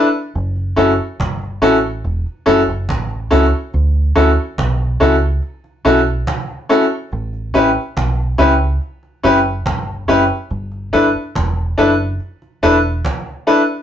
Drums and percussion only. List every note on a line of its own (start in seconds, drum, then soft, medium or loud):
0.15 cajon slap soft
0.36 cajon slap soft
0.56 cajon slap soft
1.00 cajon slap soft
1.20 cajon bass loud
1.20 cajon slap loud
1.42 cajon slap soft
1.84 cajon slap soft
2.05 cajon slap medium
2.26 cajon slap soft
2.69 cajon slap soft
2.89 cajon bass loud
2.89 cajon slap loud
3.10 cajon slap soft
3.53 cajon slap soft
3.73 cajon slap soft
3.94 cajon slap soft
4.38 cajon slap soft
4.58 cajon bass loud
4.58 cajon slap loud
4.80 cajon slap soft
5.01 cajon slap soft
5.22 cajon slap soft
5.42 cajon slap medium
5.64 cajon slap soft
6.07 cajon slap soft
6.27 cajon bass loud
6.27 cajon slap loud
6.49 cajon slap soft
6.69 cajon slap soft
6.91 cajon slap soft
7.12 cajon slap medium
7.33 cajon slap soft
7.76 cajon slap soft
7.97 cajon bass loud
7.97 cajon slap loud
8.18 cajon slap soft
8.60 cajon slap soft
8.81 cajon slap medium
9.03 cajon slap soft
9.24 cajon slap soft
9.66 cajon bass loud
9.66 cajon slap loud
9.87 cajon slap soft
10.08 cajon slap soft
10.30 cajon slap soft
10.50 cajon slap soft
10.72 cajon slap soft
11.15 cajon slap soft
11.35 cajon bass loud
11.35 cajon slap loud
11.58 cajon slap soft
11.78 cajon slap soft
11.99 cajon slap soft
12.20 cajon slap medium
12.42 cajon slap soft
12.62 cajon slap soft
12.84 cajon slap soft
13.05 cajon bass loud
13.05 cajon slap loud
13.26 cajon slap soft
13.47 cajon slap soft
13.69 cajon slap soft